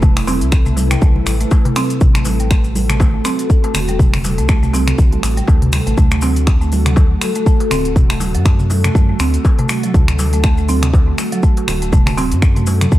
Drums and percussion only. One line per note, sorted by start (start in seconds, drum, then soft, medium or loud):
0.02 kick loud
0.02 high conga medium
0.02 darbuka dum medium
0.02 maracas medium
0.17 finger snap loud
0.17 open hi-hat medium
0.17 maracas soft
0.27 open hi-hat loud
0.27 darbuka ka loud
0.27 high conga medium
0.27 maracas medium
0.41 closed hi-hat medium
0.41 maracas soft
0.52 finger snap medium
0.52 kick loud
0.52 maracas medium
0.66 mid tom medium
0.66 maracas soft
0.76 open hi-hat loud
0.76 darbuka tek medium
0.76 high conga loud
0.76 maracas loud
0.91 finger snap loud
0.91 closed hi-hat medium
0.91 mid tom medium
0.91 maracas soft
1.01 kick loud
1.01 high conga medium
1.01 low conga loud
1.01 maracas medium
1.16 high conga loud
1.26 finger snap medium
1.26 open hi-hat loud
1.26 darbuka tek medium
1.26 maracas loud
1.41 closed hi-hat medium
1.41 maracas soft
1.51 kick loud
1.51 darbuka tek loud
1.51 maracas medium
1.65 closed hi-hat soft
1.65 darbuka dum loud
1.76 finger snap loud
1.76 open hi-hat loud
1.76 high conga medium
1.76 maracas medium
1.90 closed hi-hat medium
1.90 maracas soft
2.01 kick loud
2.01 high conga medium
2.01 darbuka dum medium
2.01 maracas medium
2.15 finger snap loud
2.15 closed hi-hat soft
2.15 maracas soft
2.25 open hi-hat medium
2.25 darbuka ka loud
2.25 high conga loud
2.25 maracas loud
2.40 closed hi-hat medium
2.40 maracas soft
2.51 finger snap medium
2.51 kick loud
2.51 maracas medium
2.64 maracas soft
2.75 open hi-hat medium
2.75 high conga loud
2.75 maracas medium
2.90 finger snap loud
2.90 closed hi-hat medium
2.90 mid tom medium
2.90 maracas soft
3.00 kick loud
3.00 darbuka tek loud
3.00 low conga loud
3.00 maracas medium
3.25 finger snap medium
3.25 open hi-hat medium
3.25 high conga medium
3.25 darbuka tek medium
3.25 maracas loud
3.39 closed hi-hat medium
3.39 maracas soft
3.50 kick loud
3.50 maracas medium
3.64 closed hi-hat soft
3.64 darbuka ka medium
3.74 finger snap loud
3.74 open hi-hat loud
3.74 low conga medium
3.74 maracas loud
3.88 closed hi-hat medium
3.88 maracas soft
3.99 kick loud
3.99 high conga medium
3.99 darbuka dum medium
3.99 maracas medium
4.13 finger snap medium
4.13 open hi-hat medium
4.13 low conga medium
4.13 maracas soft
4.24 open hi-hat medium
4.24 darbuka ka loud
4.24 high conga loud
4.24 maracas loud
4.38 closed hi-hat medium
4.38 maracas soft
4.49 finger snap medium
4.49 kick loud
4.49 maracas medium
4.63 mid tom medium
4.63 maracas soft
4.73 open hi-hat medium
4.73 darbuka tek medium
4.73 high conga loud
4.73 maracas loud
4.87 finger snap loud
4.87 closed hi-hat medium
4.87 mid tom medium
4.87 maracas soft
4.98 kick loud
4.98 high conga medium
4.98 low conga loud
4.98 maracas medium
5.12 closed hi-hat soft
5.12 high conga loud
5.23 finger snap medium
5.23 open hi-hat medium
5.23 darbuka tek medium
5.23 maracas loud
5.37 closed hi-hat medium
5.37 maracas soft
5.48 kick loud
5.48 darbuka tek medium
5.48 maracas medium
5.62 closed hi-hat soft
5.62 darbuka dum medium
5.72 finger snap loud
5.72 open hi-hat medium
5.72 high conga medium
5.72 maracas medium
5.86 closed hi-hat medium
5.86 maracas soft
5.97 kick loud
5.97 high conga medium
5.97 darbuka dum medium
5.97 maracas medium
6.11 finger snap medium
6.11 closed hi-hat soft
6.11 maracas soft
6.22 open hi-hat medium
6.22 darbuka ka medium
6.22 high conga medium
6.22 maracas loud
6.36 closed hi-hat medium
6.36 maracas soft
6.47 finger snap medium
6.47 kick loud
6.47 maracas medium
6.61 maracas soft
6.72 open hi-hat medium
6.72 high conga loud
6.72 maracas medium
6.86 finger snap medium
6.86 closed hi-hat medium
6.86 mid tom loud
6.86 maracas soft
6.96 kick loud
6.96 darbuka tek medium
6.96 low conga loud
6.96 maracas medium
7.21 finger snap medium
7.21 open hi-hat medium
7.21 darbuka tek medium
7.21 high conga medium
7.21 maracas medium
7.35 closed hi-hat medium
7.35 maracas soft
7.46 kick loud
7.46 maracas medium
7.60 closed hi-hat soft
7.60 darbuka ka medium
7.71 finger snap loud
7.71 open hi-hat medium
7.71 low conga medium
7.71 maracas medium
7.85 closed hi-hat medium
7.85 maracas soft
7.95 kick loud
7.95 high conga medium
7.95 darbuka dum medium
7.95 maracas soft
8.10 finger snap medium
8.10 open hi-hat soft
8.10 maracas soft
8.20 open hi-hat medium
8.20 darbuka ka medium
8.20 high conga medium
8.20 maracas loud
8.34 closed hi-hat medium
8.34 maracas soft
8.45 finger snap medium
8.45 kick loud
8.45 maracas medium
8.60 mid tom medium
8.60 maracas soft
8.70 open hi-hat medium
8.70 darbuka tek medium
8.70 high conga loud
8.70 maracas medium
8.84 finger snap medium
8.84 closed hi-hat medium
8.84 mid tom loud
8.84 maracas soft
8.95 kick loud
8.95 high conga medium
8.95 low conga loud
8.95 maracas medium
9.09 high conga medium
9.19 finger snap medium
9.19 open hi-hat medium
9.19 darbuka tek medium
9.19 maracas medium
9.34 closed hi-hat medium
9.34 maracas soft
9.45 kick loud
9.45 darbuka tek loud
9.45 maracas medium
9.59 closed hi-hat soft
9.59 darbuka dum loud
9.69 finger snap medium
9.69 open hi-hat medium
9.69 high conga medium
9.69 maracas loud
9.83 closed hi-hat medium
9.83 maracas soft
9.94 kick loud
9.94 high conga medium
9.94 darbuka dum medium
9.94 maracas soft
10.08 finger snap medium
10.08 closed hi-hat soft
10.08 maracas soft
10.19 open hi-hat medium
10.19 darbuka ka loud
10.19 high conga medium
10.19 maracas loud
10.33 closed hi-hat medium
10.33 maracas soft
10.44 finger snap medium
10.44 kick loud
10.44 maracas soft
10.58 maracas soft
10.69 open hi-hat medium
10.69 high conga loud
10.69 maracas medium
10.82 finger snap medium
10.82 closed hi-hat medium
10.82 mid tom loud
10.82 maracas soft
10.94 kick loud
10.94 darbuka tek medium
10.94 low conga loud
10.94 maracas soft
11.18 finger snap medium
11.18 open hi-hat medium
11.18 high conga medium
11.18 darbuka tek medium
11.18 maracas medium
11.32 closed hi-hat medium
11.32 maracas soft
11.43 kick loud
11.43 maracas medium
11.57 closed hi-hat soft
11.57 darbuka ka medium
11.68 finger snap medium
11.68 open hi-hat medium
11.68 low conga medium
11.68 maracas medium
11.82 closed hi-hat medium
11.82 maracas soft
11.92 kick loud
11.92 high conga medium
11.92 darbuka dum loud
11.92 maracas medium
12.06 finger snap medium
12.06 open hi-hat medium
12.06 low conga loud
12.06 maracas soft
12.18 open hi-hat medium
12.18 darbuka ka loud
12.18 high conga medium
12.18 maracas medium
12.32 closed hi-hat medium
12.32 maracas soft
12.42 finger snap medium
12.42 kick loud
12.42 maracas soft
12.56 closed hi-hat soft
12.56 mid tom medium
12.56 maracas soft
12.66 open hi-hat medium
12.66 darbuka ka medium
12.66 high conga loud
12.66 darbuka tek medium
12.66 maracas loud
12.81 finger snap medium
12.81 closed hi-hat medium
12.81 mid tom loud
12.81 maracas soft
12.92 kick loud
12.92 high conga medium
12.92 low conga loud
12.92 maracas medium